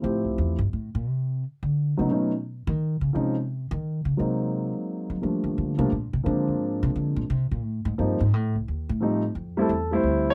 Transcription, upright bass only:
X:1
M:3/4
L:1/16
Q:"Swing" 1/4=174
K:F
V:1 name="Upright bass" clef=bass
A,,2 C,,2 E,,2 G,,2 A,,2 B,,2 | [K:Fmix] C,4 z2 D,4 _D,2 | =B,,6 ^D,4 ^C,2 | C,6 E,4 _D,2 |
C,6 z4 _G,2 | F,2 E,2 D,2 C,2 B,,2 C,2 | D,2 F,,2 _A,,2 C,2 D,2 B,,2 | C,2 B,,2 A,,2 _A,,2 G,,2 A,,2 |
A,,2 C,,2 E,,2 A,,4- A,, z | [K:F] F,,4 E,,4 D,,4 |]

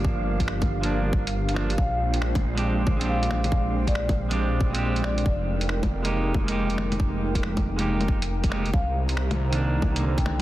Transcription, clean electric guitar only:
X:1
M:4/4
L:1/16
Q:"Swing 16ths" 1/4=138
K:Cm
V:1 name="Clean electric guitar"
[F,B,D]6- [F,B,D] [F,B,D]4 z3 [F,B,D] z | z6 z [A,CDG]4 [A,CDG]4- [A,CDG]- | [A,CDG]6- [A,CDG] [A,CDG]4 [A,CDG]4- [A,CDG] | z6 z [A,B,EG]4 [A,B,EG]4- [A,B,EG]- |
[A,B,EG]6- [A,B,EG] [A,B,EG]4 z3 [A,B,EG] z | z6 z [E,B,D]4 [D,E,B,]4- [D,E,B,] |]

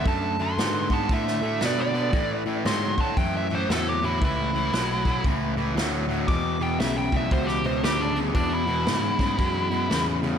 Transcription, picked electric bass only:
X:1
M:4/4
L:1/8
Q:"Swing" 1/4=116
K:A
V:1 name="Picked electric bass" clef=bass
F,,2 G,,2 A,,2 B,,2 | A,,2 G,, z F,,2 E,,2 | C,,2 B,,,2 C,,2 D,,2 | E,,2 B,,,2 C,,2 D,,2 |
E,,2 G,,2 F,,2 E,,2 |]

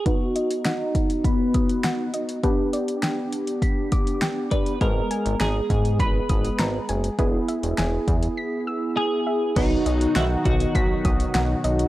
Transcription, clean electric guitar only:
X:1
M:4/4
L:1/8
Q:1/4=101
K:B
V:1 name="Clean electric guitar"
F2 D2 B,3 z | z6 z B | A2 G2 B3 z | z6 G2 |
D2 E F2 z3 |]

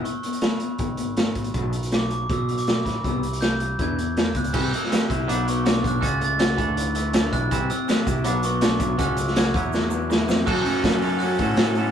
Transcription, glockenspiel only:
X:1
M:4/4
L:1/16
Q:1/4=161
K:F#m
V:1 name="Glockenspiel"
c'2 c'2 b8 z4 | z4 d'2 d'2 e'3 d'3 b2 | e'4 =g'4 ^g'6 f'2- | f'2 e'6 d'2 c'2 d'2 f'2 |
a'2 a'12 f'2- | f'2 e'6 d'2 c'2 d'4 | f'4 g'8- g'2 z2 | f'8 f'8 |]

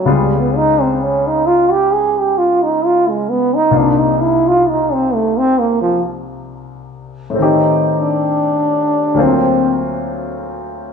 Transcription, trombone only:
X:1
M:4/4
L:1/16
Q:"Swing" 1/4=66
K:Cdor
V:1 name="Trombone"
G, =B, E C ^C E ^E G ^G =G E _E ^E ^G, B, _E | D E =E F _E C A, C B, F, z6 | E2 D6 C2 z6 |]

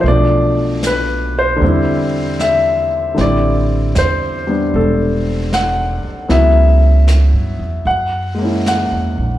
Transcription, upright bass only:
X:1
M:4/4
L:1/8
Q:"Swing" 1/4=77
K:Ador
V:1 name="Upright bass" clef=bass
B,,,4 E,,4 | A,,,2 E,,2 E,,,3 z | ^C,,2- (3C,, G,, E,, F,,2- (3F,, E,, ^A,,, |]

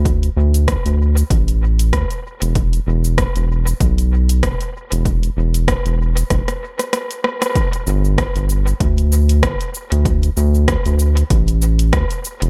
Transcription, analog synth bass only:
X:1
M:4/4
L:1/16
Q:"Swing 16ths" 1/4=96
K:Em
V:1 name="Analog synth bass" clef=bass
D,, z D,,2 z D,,2 z A,,,4 D,, z2 E,,,- | E,,, z E,,,2 z E,,,2 z B,,,4 E,,, z2 E,,,- | E,,, z E,,,2 z E,,,2 z E,,, z6 z | z2 G,,,2 z G,,,2 z D,,4 G,,, z2 D,,- |
D,, z D,,2 z D,,2 z A,,,4 D,, z2 E,,, |]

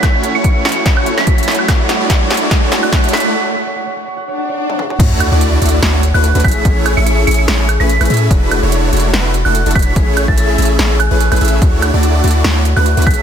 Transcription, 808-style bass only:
X:1
M:4/4
L:1/16
Q:"Swing 16ths" 1/4=145
K:A
V:1 name="808-style bass" clef=bass
z16 | z16 | z16 | D,,3 D,,3 D,,2 D,,3 D,,2 D,, A,,,2 |
A,,,3 A,,,3 A,,,2 A,,,3 A,,,2 A,,, A,,2 | E,,,3 E,,,3 E,,,2 E,,,3 E,,,2 E,,, E,,,2 | A,,,3 A,,,3 A,,,2 A,,,3 A,,,2 A,,, A,,,2 | D,,3 D,,3 D,,2 D,,3 D,,2 D,, A,,,2 |]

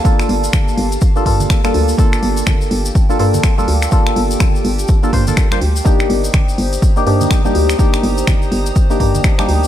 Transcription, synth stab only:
X:1
M:4/4
L:1/16
Q:"Swing 16ths" 1/4=124
K:Gm
V:1 name="Synth stab"
[B,DFA]8- [B,DFA] [B,DFA] [B,DFA]3 [B,DFA]3 | [B,DFA]8- [B,DFA] [B,DFA] [B,DFA]3 [B,DFA]3 | [B,DFA]8- [B,DFA] [B,DFA] [B,DFc] [B,DFA]2 [B,DFc] z2 | [B,DEG]8- [B,DEG] [B,DEG] [B,DEG]3 [B,DEG]3 |
[B,DEG]8- [B,DEG] [B,DEG] [B,DEG]3 [B,DEG]3 |]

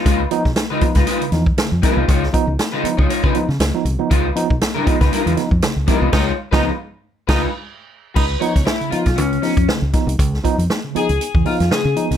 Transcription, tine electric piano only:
X:1
M:4/4
L:1/16
Q:"Swing 16ths" 1/4=118
K:Dbmix
V:1 name="Tine electric piano"
D, z [F,CE] z [CE] D, [F,CE] z [CE] D, [F,CE] z D, z [F,CE] [CE] | D, z [F,CE] [CE] [CE] D, [F,CE] z [CE] D, [F,CE] z2 [F,CE] D, [F,CE] | D, z [F,CE] z [CE] D, [F,CE] z [CE] D, [F,CE] z D, z [F,CE] [CE] | z3 [F,CE]2 z8 z3 |
D, z [F,CE] [CE] [CE] D, [F,CE] z [CE] D, [F,CE] z D, z [F,CE] [CE] | D, z [F,CE] [CE] [CE] D, [F,CE] z [CE] D, [F,CE] z D, z [F,CE] [CE] |]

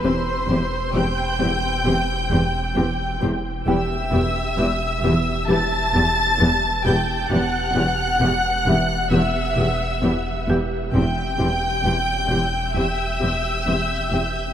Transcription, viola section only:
X:1
M:4/4
L:1/8
Q:1/4=66
K:Em
V:1 name="Viola section"
[CG] [CG] [CG] [CG] [CG] [CG] [CG] [CG] | [B,G] [B,G] [B,G] [B,G] [B,G] [B,G] [B,G] [B,G] | [B,G] [B,G] [B,G] [B,G] [B,G] [B,G] [B,G] [B,G] | [CG] [CG] [CG] [CG] [CG] [CG] [CG] [CG] |]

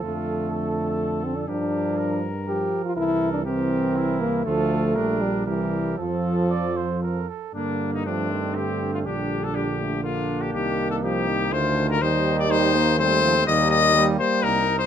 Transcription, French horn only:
X:1
M:3/4
L:1/16
Q:1/4=121
K:F
V:1 name="French horn"
A,8- A,2 C D | D6 z2 G3 F | E3 D C6 B,2 | A,6 G,2 E,4 |
F,8- F,2 z2 | [K:Gm] B,4 A,8 | G,4 G,2 A,2 B,4- | B,8 A,4 |
G,4 G,2 B,2 A,4 | [K:Eblyd] G,4 B,6 z2 |]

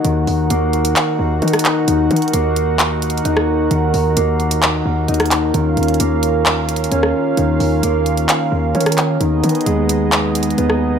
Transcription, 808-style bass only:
X:1
M:4/4
L:1/8
Q:1/4=131
K:Ebm
V:1 name="808-style bass" clef=bass
E,, E,, E,,2 z E,, E,2 | E,, E, E,,4 E,,2 | E,, E,, E,,3 E,, E,,2 | E,, E,, E,,4 E,, z |
E,, E,, E,,2 z E,, E,2 | E,, E, E,,4 E,,2 |]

